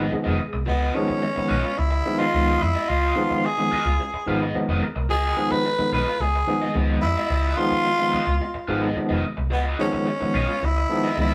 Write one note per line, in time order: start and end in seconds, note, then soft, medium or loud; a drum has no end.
0.00 0.11 B4 medium
0.00 0.11 D#5 medium
0.11 0.40 D#3 medium
0.11 0.40 F3 medium
0.11 0.40 G#3 medium
0.11 0.40 B3 loud
0.11 0.64 G#4 medium
0.11 muted overdriven electric guitar stroke soft
0.11 muted picked electric bass stroke soft
0.24 0.37 F1 medium
0.24 0.37 F4 medium
0.24 0.38 B4 medium
0.24 0.38 D#5 medium
0.38 muted overdriven electric guitar stroke soft
0.53 0.64 C2 medium
0.53 0.60 G#3 soft
0.53 0.61 B3 soft
0.53 muted overdriven electric guitar stroke soft
0.66 0.88 C#2 loud
0.66 0.96 B3 medium
0.66 0.92 F4 medium
0.66 0.93 B4 loud
0.66 0.93 D#5 loud
0.94 1.22 D#3 loud
0.94 1.22 F3 medium
0.94 1.23 G#3 loud
0.94 1.23 B3 loud
0.94 1.80 C#4 loud
1.08 muted overdriven electric guitar stroke soft
1.08 muted picked electric bass stroke medium
1.22 muted overdriven electric guitar stroke soft
1.36 1.55 D#3 medium
1.36 1.55 F3 medium
1.36 1.55 G#3 medium
1.36 1.55 B3 medium
1.36 muted overdriven electric guitar stroke soft
1.36 muted picked electric bass stroke medium
1.48 1.61 B1 medium
1.48 1.69 F4 medium
1.48 1.63 B4 medium
1.48 1.62 D#5 medium
1.63 1.71 G#3 soft
1.63 1.71 B3 soft
1.63 muted overdriven electric guitar stroke medium
1.77 1.99 C#2 loud
1.77 1.84 G#3 soft
1.77 1.85 B3 soft
1.77 2.21 E4 loud
1.77 muted overdriven electric guitar stroke soft
1.91 muted overdriven electric guitar stroke soft
2.05 2.24 D#3 loud
2.05 2.24 F3 medium
2.05 2.24 G#3 medium
2.05 2.24 B3 loud
2.19 2.63 F4 loud
2.19 2.32 F4 medium
2.19 2.33 B4 medium
2.19 2.33 D#5 medium
2.33 2.55 C#2 loud
2.33 2.61 D#3 medium
2.33 2.61 F3 medium
2.33 2.61 G#3 medium
2.33 2.61 B3 medium
2.33 2.53 F4 medium
2.33 2.53 B4 medium
2.33 2.54 D#5 loud
2.61 2.72 F2 medium
2.61 2.91 E4 loud
2.61 muted overdriven electric guitar stroke soft
2.74 2.81 G#3 soft
2.74 2.82 B3 soft
2.74 2.87 F4 medium
2.74 2.88 B4 medium
2.74 2.88 D#5 medium
2.88 3.10 C#2 loud
2.88 3.14 F4 medium
2.88 3.47 F4 medium
2.88 3.14 B4 medium
2.88 3.15 D#5 medium
3.16 3.44 D#3 loud
3.16 3.44 F3 loud
3.16 3.44 G#3 medium
3.16 3.44 B3 loud
3.30 muted overdriven electric guitar stroke soft
3.30 muted picked electric bass stroke medium
3.44 4.28 G#4 loud
3.44 muted overdriven electric guitar stroke soft
3.58 3.76 D#3 medium
3.58 3.76 F3 medium
3.58 3.76 G#3 medium
3.58 3.77 B3 medium
3.58 muted overdriven electric guitar stroke soft
3.71 3.91 F4 medium
3.71 3.85 B4 medium
3.71 3.84 D#5 medium
3.71 muted picked electric bass stroke soft
3.85 3.96 C#2 medium
3.85 3.92 G#3 soft
3.85 3.93 B3 soft
3.85 muted overdriven electric guitar stroke soft
4.00 4.06 G#3 soft
4.00 4.07 C#4 soft
4.00 muted overdriven electric guitar stroke soft
4.14 muted picked electric bass stroke soft
4.14 muted overdriven electric guitar stroke soft
4.27 4.48 G#1 medium
4.27 4.45 D#3 loud
4.27 4.45 F3 loud
4.27 4.45 G#3 loud
4.27 4.46 B3 loud
4.27 4.42 F4 medium
4.27 4.41 B4 medium
4.27 4.41 F5 medium
4.41 4.54 F4 soft
4.41 4.55 B4 soft
4.41 4.55 D#5 medium
4.54 4.82 D#3 medium
4.54 4.82 F3 medium
4.54 4.82 G#3 medium
4.54 4.82 B3 loud
4.54 4.80 C#5 medium
4.54 muted picked electric bass stroke soft
4.54 muted overdriven electric guitar stroke soft
4.69 4.79 F1 medium
4.69 4.81 F4 medium
4.69 4.82 B4 medium
4.69 4.82 D#5 medium
4.83 5.08 A#4 medium
4.83 muted overdriven electric guitar stroke soft
4.96 5.07 C2 medium
4.96 5.03 G#3 soft
4.96 5.03 B3 soft
4.96 muted overdriven electric guitar stroke medium
5.09 5.31 C#2 loud
5.09 5.35 F4 medium
5.09 5.53 G#4 loud
5.09 5.35 B4 medium
5.09 5.36 D#5 medium
5.37 5.65 D#3 loud
5.37 5.65 F3 loud
5.37 5.65 G#3 loud
5.37 5.65 B3 loud
5.51 5.93 B4 loud
5.51 muted overdriven electric guitar stroke soft
5.51 muted picked electric bass stroke medium
5.64 muted overdriven electric guitar stroke medium
5.79 5.97 D#3 medium
5.79 5.97 F3 medium
5.79 5.97 G#3 medium
5.79 5.98 B3 medium
5.79 muted overdriven electric guitar stroke soft
5.79 muted picked electric bass stroke soft
5.93 6.03 B1 medium
5.93 6.13 F4 medium
5.93 6.07 B4 medium
5.93 6.23 B4 loud
5.93 6.06 D#5 medium
6.06 6.13 G#3 soft
6.06 6.14 B3 soft
6.06 muted overdriven electric guitar stroke soft
6.20 6.41 C#2 medium
6.20 6.27 G#3 soft
6.20 6.27 B3 soft
6.20 6.76 G#4 medium
6.20 muted overdriven electric guitar stroke soft
6.35 muted overdriven electric guitar stroke soft
6.47 6.66 D#3 loud
6.47 6.66 F3 medium
6.47 6.66 G#3 medium
6.47 6.67 B3 loud
6.61 6.74 F4 medium
6.61 6.75 B4 medium
6.61 6.75 D#5 medium
6.74 6.96 C#2 medium
6.74 7.02 D#3 medium
6.74 7.03 F3 medium
6.74 7.03 G#3 medium
6.74 7.03 B3 medium
6.74 6.95 F4 loud
6.74 6.96 B4 loud
6.74 6.96 D#5 loud
7.02 7.13 F2 loud
7.02 7.59 E4 loud
7.02 muted overdriven electric guitar stroke soft
7.16 7.23 G#3 soft
7.16 7.24 B3 soft
7.16 7.29 F4 medium
7.16 7.29 B4 medium
7.16 7.30 D#5 medium
7.30 7.51 C#2 loud
7.30 7.56 F4 medium
7.30 7.56 B4 medium
7.30 7.57 D#5 medium
7.57 7.85 D#3 loud
7.57 7.85 F3 loud
7.57 7.86 G#3 medium
7.57 7.86 B3 loud
7.57 8.69 F4 loud
7.71 muted overdriven electric guitar stroke soft
7.71 muted picked electric bass stroke soft
7.85 muted overdriven electric guitar stroke soft
7.99 8.18 D#3 medium
7.99 8.18 F3 medium
7.99 8.18 G#3 medium
7.99 8.18 B3 medium
7.99 muted overdriven electric guitar stroke medium
8.12 8.33 F4 medium
8.12 8.26 B4 medium
8.12 8.26 D#5 medium
8.12 muted picked electric bass stroke soft
8.27 8.38 C#2 medium
8.27 8.34 G#3 soft
8.27 8.35 B3 soft
8.27 muted overdriven electric guitar stroke soft
8.40 8.48 G#3 soft
8.40 8.49 B3 soft
8.40 muted overdriven electric guitar stroke soft
8.54 muted overdriven electric guitar stroke soft
8.54 muted picked electric bass stroke soft
8.67 8.89 G#1 medium
8.67 8.87 D#3 loud
8.67 8.87 F3 loud
8.67 8.87 G#3 loud
8.67 8.88 B3 loud
8.67 8.81 F4 medium
8.67 8.81 B4 medium
8.67 8.80 F5 medium
8.81 8.95 F4 soft
8.81 8.96 B4 medium
8.81 8.96 D#5 medium
8.96 9.24 D#3 medium
8.96 9.24 F3 medium
8.96 9.24 G#3 medium
8.96 9.24 B3 loud
8.96 muted picked electric bass stroke soft
8.96 muted overdriven electric guitar stroke soft
9.09 9.21 F1 medium
9.09 9.22 F4 medium
9.09 9.23 B4 medium
9.09 9.23 D#5 medium
9.24 muted overdriven electric guitar stroke soft
9.37 9.52 C2 loud
9.37 9.44 G#3 soft
9.37 9.45 B3 soft
9.37 muted overdriven electric guitar stroke medium
9.50 9.73 C#2 loud
9.50 9.65 B3 medium
9.50 9.76 F4 medium
9.50 9.77 B4 loud
9.50 9.77 D#5 medium
9.79 10.07 D#3 loud
9.79 10.07 F3 loud
9.79 10.07 G#3 loud
9.79 10.07 B3 loud
9.79 10.67 C#4 loud
9.92 muted overdriven electric guitar stroke medium
9.92 muted picked electric bass stroke soft
10.06 muted overdriven electric guitar stroke soft
10.20 10.38 D#3 medium
10.20 10.39 F3 medium
10.20 10.39 G#3 medium
10.20 10.39 B3 medium
10.20 muted overdriven electric guitar stroke soft
10.20 muted picked electric bass stroke medium
10.34 10.45 B1 medium
10.34 10.54 F4 medium
10.34 10.47 B4 medium
10.34 10.47 D#5 medium
10.48 10.55 G#3 soft
10.48 10.55 B3 soft
10.48 muted overdriven electric guitar stroke soft
10.62 10.83 C#2 medium
10.62 10.69 G#3 soft
10.62 10.69 B3 soft
10.62 11.19 E4 loud
10.62 muted overdriven electric guitar stroke soft
10.77 muted overdriven electric guitar stroke soft
10.90 11.08 D#3 loud
10.90 11.08 F3 loud
10.90 11.08 G#3 medium
10.90 11.09 B3 loud
11.04 11.16 F4 medium
11.04 11.17 B4 medium
11.04 11.17 D#5 medium
11.17 11.34 C#2 medium
11.17 11.34 D#3 medium
11.17 11.34 F3 medium
11.17 11.34 G#3 medium
11.17 11.34 B3 medium
11.17 11.34 E4 loud
11.17 11.34 F4 medium
11.17 11.34 B4 medium
11.17 11.34 D#5 loud